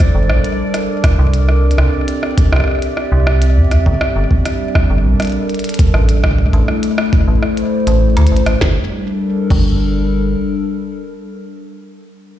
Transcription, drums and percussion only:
0.00 kick, cross-stick, closed hi-hat
0.30 cross-stick
0.44 closed hi-hat
0.74 cross-stick, closed hi-hat
1.04 kick, cross-stick, closed hi-hat
1.34 closed hi-hat
1.49 cross-stick
1.71 closed hi-hat
1.78 cross-stick
2.08 closed hi-hat
2.23 cross-stick
2.38 kick, closed hi-hat
2.52 cross-stick
2.56 cross-stick
2.60 cross-stick
2.64 cross-stick
2.68 cross-stick
2.71 cross-stick
2.75 cross-stick
2.79 cross-stick, closed hi-hat
2.97 cross-stick
3.27 cross-stick
3.42 closed hi-hat
3.71 cross-stick, closed hi-hat
3.86 kick
4.01 cross-stick
4.31 kick
4.45 cross-stick, closed hi-hat
4.75 kick, cross-stick
5.20 cross-stick, closed hi-hat
5.22 closed hi-hat
5.25 closed hi-hat
5.27 closed hi-hat
5.30 closed hi-hat
5.32 closed hi-hat
5.49 closed hi-hat
5.54 closed hi-hat
5.59 closed hi-hat
5.64 closed hi-hat
5.69 closed hi-hat
5.74 closed hi-hat
5.79 kick, closed hi-hat
5.94 cross-stick
6.09 closed hi-hat
6.24 kick, cross-stick
6.31 kick
6.39 kick
6.46 kick
6.53 closed hi-hat
6.68 cross-stick
6.83 closed hi-hat
6.98 cross-stick
7.13 kick, closed hi-hat
7.43 cross-stick
7.57 closed hi-hat
7.87 closed hi-hat
8.17 cross-stick, closed hi-hat
8.27 closed hi-hat
8.37 closed hi-hat
8.46 cross-stick, closed hi-hat
8.61 kick, snare
9.50 kick, crash

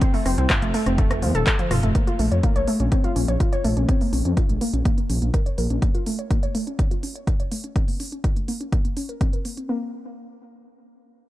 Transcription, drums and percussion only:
0.01 kick, closed hi-hat
0.14 open hi-hat
0.26 cross-stick, open hi-hat
0.38 closed hi-hat
0.50 kick, cross-stick, clap, closed hi-hat, mid tom
0.62 closed hi-hat
0.74 open hi-hat
0.86 cross-stick, closed hi-hat
0.98 kick, closed hi-hat
1.11 cross-stick, closed hi-hat
1.22 open hi-hat
1.35 closed hi-hat
1.47 kick, cross-stick, clap, closed hi-hat, high tom
1.59 closed hi-hat, high tom
1.71 cross-stick, mid tom, open hi-hat
1.83 closed hi-hat, mid tom
1.95 kick, closed hi-hat
2.07 closed hi-hat
2.19 open hi-hat
2.32 closed hi-hat
2.43 kick, closed hi-hat
2.56 closed hi-hat
2.68 open hi-hat
2.80 closed hi-hat
2.92 kick, closed hi-hat
3.04 closed hi-hat
3.16 open hi-hat
3.28 closed hi-hat
3.40 kick, closed hi-hat
3.53 closed hi-hat
3.64 open hi-hat
3.77 closed hi-hat
3.89 kick, closed hi-hat
4.01 open hi-hat
4.13 open hi-hat
4.25 closed hi-hat
4.37 kick, closed hi-hat
4.49 closed hi-hat
4.61 open hi-hat
4.74 closed hi-hat
4.85 kick, closed hi-hat
4.98 closed hi-hat
5.10 open hi-hat
5.22 closed hi-hat
5.34 kick, closed hi-hat
5.46 closed hi-hat
5.58 open hi-hat
5.70 closed hi-hat
5.82 kick, closed hi-hat
5.95 closed hi-hat
6.06 open hi-hat
6.19 closed hi-hat
6.31 kick, closed hi-hat
6.43 closed hi-hat
6.55 open hi-hat
6.67 closed hi-hat
6.79 kick, closed hi-hat
6.91 closed hi-hat
7.03 open hi-hat
7.16 closed hi-hat
7.27 kick, closed hi-hat
7.40 closed hi-hat
7.52 open hi-hat
7.64 closed hi-hat
7.76 kick, closed hi-hat
7.88 open hi-hat
8.00 open hi-hat
8.12 closed hi-hat
8.24 kick, closed hi-hat
8.36 closed hi-hat
8.48 open hi-hat
8.61 closed hi-hat
8.72 kick, closed hi-hat
8.85 closed hi-hat
8.97 open hi-hat
9.09 closed hi-hat
9.21 kick, closed hi-hat
9.33 closed hi-hat
9.45 open hi-hat
9.57 closed hi-hat

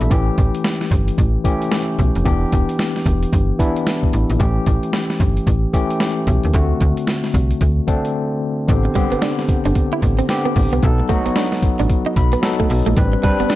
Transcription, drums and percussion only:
0.01 closed hi-hat
0.11 kick, closed hi-hat
0.38 kick, closed hi-hat
0.55 closed hi-hat
0.64 snare, closed hi-hat
0.81 snare
0.91 kick, closed hi-hat
1.08 closed hi-hat
1.18 kick, closed hi-hat
1.45 kick, closed hi-hat
1.62 closed hi-hat
1.72 snare, closed hi-hat
1.99 kick, closed hi-hat
2.15 closed hi-hat
2.26 kick, closed hi-hat
2.52 kick, closed hi-hat
2.69 closed hi-hat
2.79 snare, closed hi-hat
2.96 snare
3.06 kick, closed hi-hat
3.23 closed hi-hat
3.33 kick, closed hi-hat
3.59 kick, closed hi-hat
3.76 closed hi-hat
3.87 snare, closed hi-hat
4.03 kick
4.13 closed hi-hat
4.30 closed hi-hat
4.40 kick, closed hi-hat
4.66 kick, closed hi-hat
4.83 closed hi-hat
4.93 snare, closed hi-hat
5.10 snare
5.20 kick, closed hi-hat
5.37 closed hi-hat
5.47 kick, closed hi-hat
5.74 kick, closed hi-hat
5.90 closed hi-hat
6.00 snare, closed hi-hat
6.27 kick, closed hi-hat
6.43 closed hi-hat
6.54 kick, closed hi-hat
6.81 kick, closed hi-hat
6.97 closed hi-hat
7.07 snare, closed hi-hat
7.24 snare
7.34 kick, closed hi-hat
7.51 closed hi-hat
7.61 kick, closed hi-hat
7.88 kick, closed hi-hat
8.05 closed hi-hat
8.68 kick, closed hi-hat
8.95 kick, closed hi-hat
9.12 closed hi-hat
9.22 snare, closed hi-hat
9.39 snare
9.49 kick, closed hi-hat
9.65 closed hi-hat
9.75 kick, closed hi-hat
10.02 kick, closed hi-hat
10.19 closed hi-hat
10.29 snare, closed hi-hat
10.56 kick, open hi-hat
10.73 closed hi-hat
10.83 kick, closed hi-hat
11.09 kick, closed hi-hat
11.26 closed hi-hat
11.36 snare, closed hi-hat
11.52 snare
11.62 kick, closed hi-hat
11.79 closed hi-hat
11.90 kick, closed hi-hat
12.16 kick, closed hi-hat
12.33 closed hi-hat
12.43 snare, closed hi-hat
12.60 kick
12.70 open hi-hat
12.86 closed hi-hat
12.97 kick, closed hi-hat
13.23 kick, closed hi-hat
13.40 closed hi-hat
13.50 snare, closed hi-hat

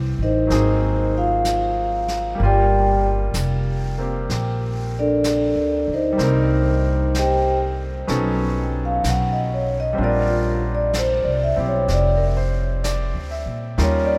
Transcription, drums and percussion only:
0.50 brush sweep, snare
1.45 brush sweep, snare, hi-hat pedal
2.08 snare
2.39 brush sweep
3.34 brush sweep, snare, hi-hat pedal
4.30 brush sweep, snare
5.24 brush sweep, snare, hi-hat pedal
6.19 brush sweep, snare
7.15 brush sweep, snare, hi-hat pedal
8.08 brush sweep, snare
9.04 brush sweep, snare, hi-hat pedal
9.99 brush sweep
10.93 brush sweep, snare, hi-hat pedal
11.88 brush sweep, snare
12.84 brush sweep, snare, hi-hat pedal
13.78 brush sweep, snare

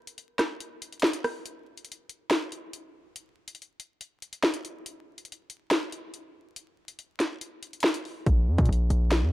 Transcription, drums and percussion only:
0.07 closed hi-hat
0.18 closed hi-hat
0.39 cross-stick, snare, closed hi-hat
0.60 closed hi-hat
0.82 closed hi-hat
0.92 closed hi-hat
1.00 snare, closed hi-hat
1.07 closed hi-hat
1.13 closed hi-hat
1.24 cross-stick, open hi-hat
1.46 closed hi-hat
1.77 closed hi-hat
1.85 closed hi-hat
1.92 closed hi-hat
2.09 closed hi-hat
2.31 snare, closed hi-hat
2.52 closed hi-hat
2.73 closed hi-hat
3.16 closed hi-hat
3.48 closed hi-hat
3.55 closed hi-hat
3.62 closed hi-hat
3.80 closed hi-hat
4.01 closed hi-hat
4.22 closed hi-hat
4.33 closed hi-hat
4.43 snare
4.54 closed hi-hat
4.65 closed hi-hat
4.86 closed hi-hat
5.18 closed hi-hat
5.25 closed hi-hat
5.32 closed hi-hat
5.50 closed hi-hat
5.71 snare, closed hi-hat
5.92 closed hi-hat
6.14 closed hi-hat
6.56 closed hi-hat
6.88 closed hi-hat
6.99 closed hi-hat
7.20 snare, closed hi-hat
7.41 closed hi-hat
7.63 closed hi-hat
7.73 closed hi-hat
7.80 snare, closed hi-hat
7.87 closed hi-hat
7.94 closed hi-hat
8.05 open hi-hat
8.26 kick, closed hi-hat
8.58 kick, closed hi-hat
8.65 closed hi-hat
8.73 closed hi-hat
8.90 closed hi-hat
9.11 snare, closed hi-hat

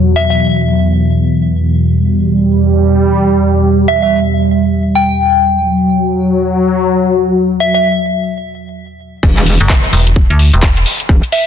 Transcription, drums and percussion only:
9.23 kick, crash
9.37 clap, closed hi-hat
9.46 open hi-hat
9.61 closed hi-hat
9.69 kick, clap
9.84 closed hi-hat
9.93 open hi-hat
10.07 closed hi-hat
10.16 kick
10.30 closed hi-hat
10.39 open hi-hat
10.54 closed hi-hat
10.62 kick, clap
10.77 closed hi-hat
10.86 open hi-hat
11.00 closed hi-hat
11.09 kick
11.23 closed hi-hat
11.32 open hi-hat

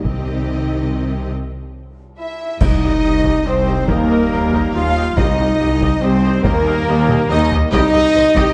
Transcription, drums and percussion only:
0.04 taiko
2.61 concert bass drum, taiko, crash
3.25 taiko
3.89 taiko
4.53 taiko
5.17 taiko
5.81 taiko
6.44 taiko
7.09 taiko mid
7.30 taiko high
7.51 taiko low
7.72 taiko
7.94 taiko rim
8.36 taiko

